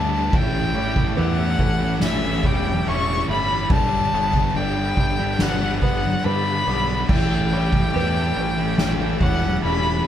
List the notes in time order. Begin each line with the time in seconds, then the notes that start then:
Already playing: D2 G2 D3 G3 B3 D4 A5 B5 D6
0.09 G3 B3 D4
0.30 A1 A2 E3 A3 C#4 E4 E5 A5, kick, crash
0.35 G5
0.73 E3 G3 A3 C#4 E4 C#5, crash
0.96 A3 C#4 E4, kick
1.16 E2 A2 E3 A3 C#4 E4 G4 B4 F#5, crash
1.38 A3 C#4 E4
1.58 A1 E3 A3 C#4 E4 A4, muted distorted electric guitar stroke, kick, crash
1.79 A3 C#4 E4, muted distorted electric guitar stroke
2.00 A1 E3 A3 C#4 E4 E5, snare, crash
2.22 A3 C#4 E4
2.43 E1 E3 G3 A3 C#4 E4 C#5 G5, kick, crash
2.64 A3 C#4 E4, muted distorted electric guitar stroke
2.85 E1 A2 E3 A3 C#4 E4 E5 C#6, crash
3.27 G1 E3 G3 A3 C#4 E4 E5 B5, crash
3.50 A3 C#4 E4
3.69 G1 G2 D3 G3 B3 D4 A5 B5, kick, crash
4.12 G1 D3 G3 B3 D4 C#5, crash
4.33 G3 B3 D4, kick
4.55 G1 G2 D3 G3 B3 D4 D5 G5, crash
4.76 G3 B3 D4
4.96 G1 D3 G3 B3 D4 D5, muted distorted electric guitar stroke, kick, crash
5.18 G3 B3 D4, muted distorted electric guitar stroke
5.39 G1 D3 G3 B3 D4 F#5, snare, crash
5.61 G3 B3 D4
5.82 D3 G3 B3 D4 B4 F#5, kick, crash
6.04 G3 B3 D4, muted distorted electric guitar stroke
6.25 G2 D3 G3 B3 D4 B4 B5, crash
6.67 B1 D3 G3 B3 D6, crash
6.71 D4
6.89 G3 B3 D4
7.08 A1 A2 E3 G4 A4 E5 G5 A5, kick, crash
7.12 A3 C#4 E4
7.52 E3 G3 A3 C#4 E4 C#5, crash
7.71 A3 C#4 E4, kick
7.93 E2 A2 E3 A3 C#4 G4 B4, crash
7.98 E4
8.17 A3 C#4 E4
8.35 A1 E3 A3 C#4 E4 A4, muted distorted electric guitar stroke, crash
8.57 A3 C#4 E4, muted distorted electric guitar stroke
8.77 A1 E3 A3 C#4 E4, snare, crash
9.00 A3 C#4 E4
9.21 E1 E3 G3 A3 C#4 E4 C#5 F#5, kick, crash
9.42 A3 C#4 E4, muted distorted electric guitar stroke
9.63 E1 A2 E3 A3 C#4 E4 E5 B5, crash